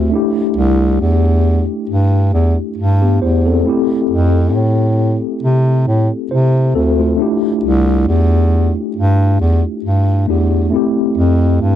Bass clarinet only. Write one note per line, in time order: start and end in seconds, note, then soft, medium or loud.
0.57 0.98 C2 loud
1.01 1.65 E2 loud
1.89 2.31 G2 loud
2.34 2.56 E2 medium
2.78 3.19 G2 loud
3.22 3.63 E2 medium
4.10 4.56 F2 loud
4.54 5.19 A2 medium
5.43 5.85 C3 loud
5.87 6.10 A2 loud
6.31 6.73 C3 loud
6.75 7.17 D2 medium
7.63 8.05 C2 loud
8.08 8.72 E2 loud
8.96 9.38 G2 loud
9.40 9.63 E2 loud
9.84 10.26 G2 medium
10.28 10.70 E2 medium
11.17 11.59 F2 loud
11.62 11.76 G2 loud